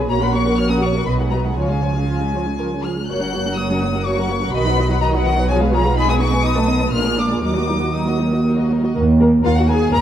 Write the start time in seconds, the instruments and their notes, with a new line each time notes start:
0.00 violin section G#4 B4
0.09 double bass section A#1, cello section A#2, viola section A#3 F#4, violin section C#5 A#5
0.22 viola section C#4 A#4, violin section A#4 F#5 B5
0.33 viola section A#3 F#4, violin section C#5 C#6
0.46 viola section C#4 A#4, violin section A#4 F#5
0.57 viola section A#3 F#4, violin section C#5 F6
0.69 viola section C#4 A#4, violin section A#4 F#5 D#6
0.81 viola section A#3 F#4, violin section C#5 C#6
0.93 viola section C#4 A#4, violin section A#4 F#5
1.05 double bass section B1, cello section B2, viola section F#3 F#4, violin section B4 D#5 B5
1.19 viola section G#3 D#4, violin section G#4 F#5
1.31 viola section F#3 F#4, violin section B4 D#5 A#5
1.43 viola section G#3 D#4, violin section G#4 F#5
1.56 double bass section C#2, cello section C#3, viola section F3 F4, violin section F4 C#5 G#5
1.69 viola section G#3 C#4, violin section G#4 F5
1.81 viola section F3 F4, violin section F4 C#5
1.94 viola section G#3 C#4, violin section G#4 F5
2.07 viola section F3 F4, violin section F4
2.21 viola section G#3 C#4
2.33 viola section F3 F4, violin section C#4
2.47 viola section G#3 C#4
2.59 viola section F3 F4, violin section A#4
2.72 viola section G#3 C#4
2.83 viola section F3 F4, violin section G#4 F6
2.97 viola section G#3 C#4
3.08 double bass section F#1, cello section F#2, viola section A#3 F#4, violin section C#5 F#6
3.21 viola section F#3 C#4, violin section A#4 F#5
3.33 viola section A#3 F#4, violin section C#5
3.46 viola section F#3 C#4, violin section A#4 F#5
3.57 viola section A#3 F#4, violin section C#5 D#6
3.69 viola section F#3 C#4, violin section A#4 F#5
3.82 viola section A#3 F#4, violin section C#5
3.94 viola section F#3 C#4, violin section A#4 F#5
4.05 viola section A#3 F#4, violin section C#5 C#6
4.18 viola section F#3 C#4, violin section A#4 F#5
4.30 viola section A#3 F#4, violin section C#5
4.41 viola section F#3 C#4, violin section A#4 F#5
4.53 double bass section B1, cello section B2, viola section D#3 F#4, violin section D#5 B5
4.65 viola section F#3 D#4, violin section B4 F#5
4.78 viola section D#3 F#4, violin section D#5
4.90 viola section F#3 D#4, violin section B4 F#5
5.02 viola section D#3 F#4, violin section D#5 A#5
5.14 viola section F#3 D#4, violin section B4 F#5
5.25 viola section D#3 F#4, violin section D#5 F#5
5.37 viola section F#3 D#4, violin section B4 F#5
5.48 viola section F3 F4, violin section G#4 C#5 G#5
5.60 viola section G#3 G#4, violin section B4 F5
5.73 viola section F3 F4, violin section G#4 C#5 A#5
5.84 viola section G#3 G#4, violin section B4 F5
5.96 viola section B3 D#4, violin section G#4 D#5 B5
6.09 viola section G#3 B3, violin section B4 G#5 D#6
6.20 viola section B3 D#4, violin section G#4 D#5 C#6
6.33 viola section G#3 B3, violin section B4 G#5
6.45 viola section B3 D#4, violin section B4 D#5 D#6
6.57 viola section A3 B3, violin section A4 B4
6.68 viola section B3 D#4, violin section B4 D#5
6.81 viola section A3 B3, violin section A4 B4
6.93 double bass section A#1, cello section A#2, viola section G#3 D4, violin section F4 A#4 F6
7.06 viola section A#3 F4, violin section G#4 D5
7.18 viola section G#3 D4, violin section F4 A#4 D6
7.29 viola section A#3 F4, violin section G#4 D5
7.42 double bass section D#2, cello section D#2, viola section F#3 D#4, violin section D#4 A#4 D6
7.55 viola section A#3 F#4, violin section F#4 D#5
7.69 viola section F#3 D#4, violin section D#4 A#4
7.81 viola section A#3 F#4, violin section F#4 D#5
7.93 viola section F#3 D#4, violin section D#4 A#4 D#6
8.07 viola section A#3 F#4, violin section F#4 D#5
8.19 viola section F#3 D#4, violin section D#4 A#4
8.33 viola section A#3 F#4, violin section F#4 D#5
8.44 viola section F#3 D#4, violin section D#4 A#4
8.57 viola section A#3 F#4, violin section F#4 D#5
8.71 viola section F#3 D#4, violin section D#4 A#4
8.83 viola section A#3 F#4, violin section F#4 D#5
8.95 cello section D#2, double bass section D#2, viola section A#3 A#4
9.21 viola section A#3 A#4
9.44 double bass section D#2, cello section D#2, viola section A#3 A#4, violin section F4 F5
9.58 violin section F#4 F#5
9.68 viola section A#3 A#4, violin section G#4 G#5
9.92 double bass section D#2, cello section D#2, viola section A#3 A#4, violin section A#4 A#5